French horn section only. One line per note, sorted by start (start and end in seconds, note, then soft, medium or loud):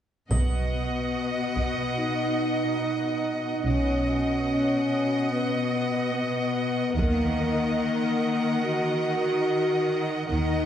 0.31 1.94 B3 soft
1.98 3.65 D#4 medium
3.64 5.28 C#4 medium
5.31 6.13 B3 medium
6.14 6.96 B3 soft
6.97 8.61 A#3 soft
8.65 10.14 F#4 medium
10.31 10.65 D#4 medium